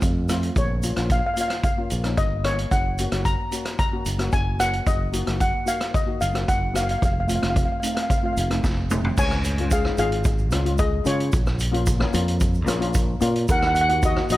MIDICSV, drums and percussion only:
0, 0, Header, 1, 2, 480
1, 0, Start_track
1, 0, Key_signature, -5, "minor"
1, 0, Tempo, 538600
1, 501, Time_signature, 4, 2, 24, 8
1, 12807, End_track
2, 0, Start_track
2, 0, Title_t, "Drums"
2, 16, Note_on_c, 9, 82, 56
2, 19, Note_on_c, 9, 36, 85
2, 20, Note_on_c, 9, 42, 57
2, 105, Note_off_c, 9, 82, 0
2, 108, Note_off_c, 9, 36, 0
2, 110, Note_off_c, 9, 42, 0
2, 258, Note_on_c, 9, 82, 85
2, 260, Note_on_c, 9, 37, 65
2, 260, Note_on_c, 9, 42, 66
2, 348, Note_off_c, 9, 82, 0
2, 349, Note_off_c, 9, 37, 0
2, 349, Note_off_c, 9, 42, 0
2, 380, Note_on_c, 9, 82, 23
2, 382, Note_on_c, 9, 42, 51
2, 469, Note_off_c, 9, 82, 0
2, 471, Note_off_c, 9, 42, 0
2, 499, Note_on_c, 9, 36, 101
2, 499, Note_on_c, 9, 42, 47
2, 502, Note_on_c, 9, 82, 57
2, 588, Note_off_c, 9, 36, 0
2, 588, Note_off_c, 9, 42, 0
2, 591, Note_off_c, 9, 82, 0
2, 740, Note_on_c, 9, 82, 79
2, 743, Note_on_c, 9, 42, 70
2, 829, Note_off_c, 9, 82, 0
2, 832, Note_off_c, 9, 42, 0
2, 859, Note_on_c, 9, 37, 75
2, 859, Note_on_c, 9, 42, 52
2, 948, Note_off_c, 9, 37, 0
2, 948, Note_off_c, 9, 42, 0
2, 977, Note_on_c, 9, 42, 55
2, 979, Note_on_c, 9, 36, 81
2, 985, Note_on_c, 9, 82, 55
2, 1066, Note_off_c, 9, 42, 0
2, 1068, Note_off_c, 9, 36, 0
2, 1074, Note_off_c, 9, 82, 0
2, 1219, Note_on_c, 9, 42, 70
2, 1223, Note_on_c, 9, 82, 72
2, 1308, Note_off_c, 9, 42, 0
2, 1312, Note_off_c, 9, 82, 0
2, 1336, Note_on_c, 9, 37, 74
2, 1336, Note_on_c, 9, 42, 52
2, 1426, Note_off_c, 9, 37, 0
2, 1426, Note_off_c, 9, 42, 0
2, 1455, Note_on_c, 9, 42, 50
2, 1457, Note_on_c, 9, 36, 91
2, 1464, Note_on_c, 9, 82, 51
2, 1544, Note_off_c, 9, 42, 0
2, 1546, Note_off_c, 9, 36, 0
2, 1553, Note_off_c, 9, 82, 0
2, 1693, Note_on_c, 9, 42, 69
2, 1702, Note_on_c, 9, 82, 78
2, 1782, Note_off_c, 9, 42, 0
2, 1791, Note_off_c, 9, 82, 0
2, 1816, Note_on_c, 9, 37, 67
2, 1816, Note_on_c, 9, 42, 47
2, 1825, Note_on_c, 9, 82, 22
2, 1905, Note_off_c, 9, 37, 0
2, 1905, Note_off_c, 9, 42, 0
2, 1914, Note_off_c, 9, 82, 0
2, 1937, Note_on_c, 9, 42, 68
2, 1938, Note_on_c, 9, 36, 81
2, 1943, Note_on_c, 9, 82, 52
2, 2026, Note_off_c, 9, 42, 0
2, 2027, Note_off_c, 9, 36, 0
2, 2032, Note_off_c, 9, 82, 0
2, 2177, Note_on_c, 9, 37, 77
2, 2177, Note_on_c, 9, 42, 76
2, 2266, Note_off_c, 9, 37, 0
2, 2266, Note_off_c, 9, 42, 0
2, 2303, Note_on_c, 9, 42, 55
2, 2393, Note_off_c, 9, 42, 0
2, 2418, Note_on_c, 9, 36, 84
2, 2421, Note_on_c, 9, 42, 57
2, 2422, Note_on_c, 9, 82, 54
2, 2508, Note_off_c, 9, 36, 0
2, 2510, Note_off_c, 9, 42, 0
2, 2512, Note_off_c, 9, 82, 0
2, 2660, Note_on_c, 9, 42, 75
2, 2662, Note_on_c, 9, 82, 71
2, 2749, Note_off_c, 9, 42, 0
2, 2751, Note_off_c, 9, 82, 0
2, 2778, Note_on_c, 9, 37, 71
2, 2778, Note_on_c, 9, 42, 60
2, 2867, Note_off_c, 9, 37, 0
2, 2867, Note_off_c, 9, 42, 0
2, 2897, Note_on_c, 9, 36, 79
2, 2898, Note_on_c, 9, 42, 55
2, 2900, Note_on_c, 9, 82, 61
2, 2986, Note_off_c, 9, 36, 0
2, 2987, Note_off_c, 9, 42, 0
2, 2989, Note_off_c, 9, 82, 0
2, 3136, Note_on_c, 9, 42, 66
2, 3141, Note_on_c, 9, 82, 79
2, 3225, Note_off_c, 9, 42, 0
2, 3230, Note_off_c, 9, 82, 0
2, 3255, Note_on_c, 9, 37, 68
2, 3255, Note_on_c, 9, 42, 58
2, 3344, Note_off_c, 9, 37, 0
2, 3344, Note_off_c, 9, 42, 0
2, 3376, Note_on_c, 9, 36, 90
2, 3378, Note_on_c, 9, 42, 57
2, 3378, Note_on_c, 9, 82, 53
2, 3466, Note_off_c, 9, 36, 0
2, 3467, Note_off_c, 9, 42, 0
2, 3467, Note_off_c, 9, 82, 0
2, 3615, Note_on_c, 9, 42, 79
2, 3617, Note_on_c, 9, 82, 81
2, 3704, Note_off_c, 9, 42, 0
2, 3706, Note_off_c, 9, 82, 0
2, 3734, Note_on_c, 9, 37, 67
2, 3734, Note_on_c, 9, 42, 52
2, 3742, Note_on_c, 9, 82, 25
2, 3823, Note_off_c, 9, 37, 0
2, 3823, Note_off_c, 9, 42, 0
2, 3831, Note_off_c, 9, 82, 0
2, 3855, Note_on_c, 9, 82, 58
2, 3856, Note_on_c, 9, 36, 83
2, 3856, Note_on_c, 9, 42, 58
2, 3944, Note_off_c, 9, 82, 0
2, 3945, Note_off_c, 9, 36, 0
2, 3945, Note_off_c, 9, 42, 0
2, 4097, Note_on_c, 9, 37, 72
2, 4097, Note_on_c, 9, 42, 76
2, 4103, Note_on_c, 9, 82, 92
2, 4186, Note_off_c, 9, 37, 0
2, 4186, Note_off_c, 9, 42, 0
2, 4192, Note_off_c, 9, 82, 0
2, 4218, Note_on_c, 9, 42, 49
2, 4307, Note_off_c, 9, 42, 0
2, 4336, Note_on_c, 9, 36, 95
2, 4336, Note_on_c, 9, 42, 54
2, 4341, Note_on_c, 9, 82, 61
2, 4425, Note_off_c, 9, 36, 0
2, 4425, Note_off_c, 9, 42, 0
2, 4430, Note_off_c, 9, 82, 0
2, 4575, Note_on_c, 9, 42, 71
2, 4580, Note_on_c, 9, 82, 85
2, 4664, Note_off_c, 9, 42, 0
2, 4670, Note_off_c, 9, 82, 0
2, 4697, Note_on_c, 9, 37, 70
2, 4697, Note_on_c, 9, 42, 51
2, 4786, Note_off_c, 9, 37, 0
2, 4786, Note_off_c, 9, 42, 0
2, 4816, Note_on_c, 9, 36, 78
2, 4817, Note_on_c, 9, 42, 61
2, 4820, Note_on_c, 9, 82, 62
2, 4905, Note_off_c, 9, 36, 0
2, 4906, Note_off_c, 9, 42, 0
2, 4909, Note_off_c, 9, 82, 0
2, 5055, Note_on_c, 9, 42, 61
2, 5057, Note_on_c, 9, 82, 88
2, 5144, Note_off_c, 9, 42, 0
2, 5146, Note_off_c, 9, 82, 0
2, 5175, Note_on_c, 9, 37, 80
2, 5175, Note_on_c, 9, 42, 54
2, 5264, Note_off_c, 9, 37, 0
2, 5264, Note_off_c, 9, 42, 0
2, 5297, Note_on_c, 9, 36, 93
2, 5298, Note_on_c, 9, 42, 49
2, 5305, Note_on_c, 9, 82, 61
2, 5386, Note_off_c, 9, 36, 0
2, 5387, Note_off_c, 9, 42, 0
2, 5394, Note_off_c, 9, 82, 0
2, 5538, Note_on_c, 9, 42, 72
2, 5538, Note_on_c, 9, 82, 80
2, 5627, Note_off_c, 9, 42, 0
2, 5627, Note_off_c, 9, 82, 0
2, 5659, Note_on_c, 9, 37, 70
2, 5659, Note_on_c, 9, 42, 51
2, 5665, Note_on_c, 9, 82, 24
2, 5748, Note_off_c, 9, 37, 0
2, 5748, Note_off_c, 9, 42, 0
2, 5754, Note_off_c, 9, 82, 0
2, 5778, Note_on_c, 9, 36, 78
2, 5779, Note_on_c, 9, 42, 65
2, 5785, Note_on_c, 9, 82, 60
2, 5867, Note_off_c, 9, 36, 0
2, 5868, Note_off_c, 9, 42, 0
2, 5874, Note_off_c, 9, 82, 0
2, 6018, Note_on_c, 9, 37, 74
2, 6018, Note_on_c, 9, 42, 73
2, 6025, Note_on_c, 9, 82, 84
2, 6107, Note_off_c, 9, 37, 0
2, 6107, Note_off_c, 9, 42, 0
2, 6114, Note_off_c, 9, 82, 0
2, 6139, Note_on_c, 9, 42, 52
2, 6229, Note_off_c, 9, 42, 0
2, 6258, Note_on_c, 9, 36, 93
2, 6261, Note_on_c, 9, 42, 49
2, 6264, Note_on_c, 9, 82, 54
2, 6347, Note_off_c, 9, 36, 0
2, 6350, Note_off_c, 9, 42, 0
2, 6353, Note_off_c, 9, 82, 0
2, 6498, Note_on_c, 9, 42, 69
2, 6499, Note_on_c, 9, 82, 78
2, 6587, Note_off_c, 9, 42, 0
2, 6588, Note_off_c, 9, 82, 0
2, 6619, Note_on_c, 9, 37, 78
2, 6619, Note_on_c, 9, 42, 49
2, 6626, Note_on_c, 9, 82, 23
2, 6708, Note_off_c, 9, 37, 0
2, 6708, Note_off_c, 9, 42, 0
2, 6715, Note_off_c, 9, 82, 0
2, 6738, Note_on_c, 9, 36, 82
2, 6738, Note_on_c, 9, 42, 60
2, 6743, Note_on_c, 9, 82, 63
2, 6827, Note_off_c, 9, 36, 0
2, 6827, Note_off_c, 9, 42, 0
2, 6832, Note_off_c, 9, 82, 0
2, 6977, Note_on_c, 9, 42, 74
2, 6983, Note_on_c, 9, 82, 78
2, 7066, Note_off_c, 9, 42, 0
2, 7072, Note_off_c, 9, 82, 0
2, 7099, Note_on_c, 9, 37, 72
2, 7099, Note_on_c, 9, 42, 62
2, 7107, Note_on_c, 9, 82, 22
2, 7188, Note_off_c, 9, 37, 0
2, 7188, Note_off_c, 9, 42, 0
2, 7196, Note_off_c, 9, 82, 0
2, 7219, Note_on_c, 9, 36, 82
2, 7220, Note_on_c, 9, 42, 52
2, 7227, Note_on_c, 9, 82, 61
2, 7308, Note_off_c, 9, 36, 0
2, 7309, Note_off_c, 9, 42, 0
2, 7316, Note_off_c, 9, 82, 0
2, 7463, Note_on_c, 9, 42, 74
2, 7463, Note_on_c, 9, 82, 81
2, 7552, Note_off_c, 9, 42, 0
2, 7552, Note_off_c, 9, 82, 0
2, 7581, Note_on_c, 9, 37, 70
2, 7581, Note_on_c, 9, 42, 53
2, 7583, Note_on_c, 9, 82, 24
2, 7670, Note_off_c, 9, 37, 0
2, 7670, Note_off_c, 9, 42, 0
2, 7673, Note_off_c, 9, 82, 0
2, 7699, Note_on_c, 9, 36, 90
2, 7700, Note_on_c, 9, 82, 60
2, 7701, Note_on_c, 9, 38, 61
2, 7788, Note_off_c, 9, 36, 0
2, 7789, Note_off_c, 9, 82, 0
2, 7790, Note_off_c, 9, 38, 0
2, 7936, Note_on_c, 9, 82, 89
2, 7941, Note_on_c, 9, 45, 68
2, 8026, Note_off_c, 9, 82, 0
2, 8030, Note_off_c, 9, 45, 0
2, 8060, Note_on_c, 9, 43, 70
2, 8149, Note_off_c, 9, 43, 0
2, 8178, Note_on_c, 9, 36, 102
2, 8178, Note_on_c, 9, 82, 88
2, 8179, Note_on_c, 9, 49, 96
2, 8267, Note_off_c, 9, 36, 0
2, 8267, Note_off_c, 9, 82, 0
2, 8268, Note_off_c, 9, 49, 0
2, 8297, Note_on_c, 9, 37, 75
2, 8298, Note_on_c, 9, 82, 28
2, 8386, Note_off_c, 9, 37, 0
2, 8387, Note_off_c, 9, 82, 0
2, 8415, Note_on_c, 9, 82, 75
2, 8417, Note_on_c, 9, 42, 82
2, 8505, Note_off_c, 9, 82, 0
2, 8506, Note_off_c, 9, 42, 0
2, 8537, Note_on_c, 9, 42, 55
2, 8626, Note_off_c, 9, 42, 0
2, 8655, Note_on_c, 9, 82, 101
2, 8656, Note_on_c, 9, 36, 91
2, 8656, Note_on_c, 9, 42, 65
2, 8744, Note_off_c, 9, 82, 0
2, 8745, Note_off_c, 9, 36, 0
2, 8745, Note_off_c, 9, 42, 0
2, 8776, Note_on_c, 9, 37, 79
2, 8865, Note_off_c, 9, 37, 0
2, 8893, Note_on_c, 9, 82, 77
2, 8896, Note_on_c, 9, 42, 76
2, 8983, Note_off_c, 9, 82, 0
2, 8985, Note_off_c, 9, 42, 0
2, 9017, Note_on_c, 9, 42, 60
2, 9107, Note_off_c, 9, 42, 0
2, 9130, Note_on_c, 9, 82, 94
2, 9136, Note_on_c, 9, 36, 106
2, 9136, Note_on_c, 9, 42, 53
2, 9219, Note_off_c, 9, 82, 0
2, 9225, Note_off_c, 9, 36, 0
2, 9226, Note_off_c, 9, 42, 0
2, 9253, Note_on_c, 9, 82, 33
2, 9342, Note_off_c, 9, 82, 0
2, 9369, Note_on_c, 9, 82, 73
2, 9377, Note_on_c, 9, 37, 83
2, 9377, Note_on_c, 9, 42, 84
2, 9458, Note_off_c, 9, 82, 0
2, 9466, Note_off_c, 9, 37, 0
2, 9466, Note_off_c, 9, 42, 0
2, 9500, Note_on_c, 9, 42, 57
2, 9589, Note_off_c, 9, 42, 0
2, 9611, Note_on_c, 9, 82, 86
2, 9617, Note_on_c, 9, 36, 91
2, 9619, Note_on_c, 9, 42, 70
2, 9700, Note_off_c, 9, 82, 0
2, 9706, Note_off_c, 9, 36, 0
2, 9708, Note_off_c, 9, 42, 0
2, 9853, Note_on_c, 9, 82, 80
2, 9861, Note_on_c, 9, 42, 82
2, 9942, Note_off_c, 9, 82, 0
2, 9950, Note_off_c, 9, 42, 0
2, 9982, Note_on_c, 9, 42, 55
2, 10071, Note_off_c, 9, 42, 0
2, 10091, Note_on_c, 9, 82, 84
2, 10098, Note_on_c, 9, 36, 107
2, 10100, Note_on_c, 9, 42, 61
2, 10180, Note_off_c, 9, 82, 0
2, 10187, Note_off_c, 9, 36, 0
2, 10189, Note_off_c, 9, 42, 0
2, 10216, Note_on_c, 9, 82, 28
2, 10221, Note_on_c, 9, 37, 77
2, 10305, Note_off_c, 9, 82, 0
2, 10310, Note_off_c, 9, 37, 0
2, 10332, Note_on_c, 9, 82, 76
2, 10342, Note_on_c, 9, 42, 83
2, 10421, Note_off_c, 9, 82, 0
2, 10431, Note_off_c, 9, 42, 0
2, 10464, Note_on_c, 9, 42, 64
2, 10553, Note_off_c, 9, 42, 0
2, 10573, Note_on_c, 9, 82, 94
2, 10579, Note_on_c, 9, 36, 91
2, 10580, Note_on_c, 9, 42, 68
2, 10662, Note_off_c, 9, 82, 0
2, 10668, Note_off_c, 9, 36, 0
2, 10670, Note_off_c, 9, 42, 0
2, 10698, Note_on_c, 9, 37, 95
2, 10787, Note_off_c, 9, 37, 0
2, 10816, Note_on_c, 9, 82, 69
2, 10822, Note_on_c, 9, 42, 90
2, 10905, Note_off_c, 9, 82, 0
2, 10911, Note_off_c, 9, 42, 0
2, 10943, Note_on_c, 9, 42, 65
2, 11032, Note_off_c, 9, 42, 0
2, 11055, Note_on_c, 9, 82, 86
2, 11058, Note_on_c, 9, 42, 62
2, 11059, Note_on_c, 9, 36, 96
2, 11144, Note_off_c, 9, 82, 0
2, 11147, Note_off_c, 9, 42, 0
2, 11148, Note_off_c, 9, 36, 0
2, 11177, Note_on_c, 9, 82, 28
2, 11266, Note_off_c, 9, 82, 0
2, 11295, Note_on_c, 9, 82, 68
2, 11301, Note_on_c, 9, 37, 87
2, 11301, Note_on_c, 9, 42, 82
2, 11384, Note_off_c, 9, 82, 0
2, 11390, Note_off_c, 9, 37, 0
2, 11390, Note_off_c, 9, 42, 0
2, 11422, Note_on_c, 9, 42, 60
2, 11511, Note_off_c, 9, 42, 0
2, 11532, Note_on_c, 9, 82, 85
2, 11540, Note_on_c, 9, 36, 92
2, 11544, Note_on_c, 9, 42, 70
2, 11621, Note_off_c, 9, 82, 0
2, 11630, Note_off_c, 9, 36, 0
2, 11633, Note_off_c, 9, 42, 0
2, 11776, Note_on_c, 9, 82, 78
2, 11779, Note_on_c, 9, 42, 84
2, 11865, Note_off_c, 9, 82, 0
2, 11868, Note_off_c, 9, 42, 0
2, 11902, Note_on_c, 9, 42, 58
2, 11991, Note_off_c, 9, 42, 0
2, 12017, Note_on_c, 9, 82, 94
2, 12021, Note_on_c, 9, 36, 99
2, 12021, Note_on_c, 9, 42, 57
2, 12106, Note_off_c, 9, 82, 0
2, 12110, Note_off_c, 9, 36, 0
2, 12111, Note_off_c, 9, 42, 0
2, 12141, Note_on_c, 9, 37, 82
2, 12142, Note_on_c, 9, 82, 25
2, 12230, Note_off_c, 9, 37, 0
2, 12231, Note_off_c, 9, 82, 0
2, 12259, Note_on_c, 9, 82, 73
2, 12261, Note_on_c, 9, 42, 74
2, 12348, Note_off_c, 9, 82, 0
2, 12350, Note_off_c, 9, 42, 0
2, 12381, Note_on_c, 9, 42, 53
2, 12470, Note_off_c, 9, 42, 0
2, 12500, Note_on_c, 9, 82, 94
2, 12501, Note_on_c, 9, 42, 68
2, 12502, Note_on_c, 9, 36, 98
2, 12590, Note_off_c, 9, 82, 0
2, 12591, Note_off_c, 9, 36, 0
2, 12591, Note_off_c, 9, 42, 0
2, 12622, Note_on_c, 9, 37, 84
2, 12711, Note_off_c, 9, 37, 0
2, 12740, Note_on_c, 9, 82, 73
2, 12742, Note_on_c, 9, 42, 84
2, 12807, Note_off_c, 9, 42, 0
2, 12807, Note_off_c, 9, 82, 0
2, 12807, End_track
0, 0, End_of_file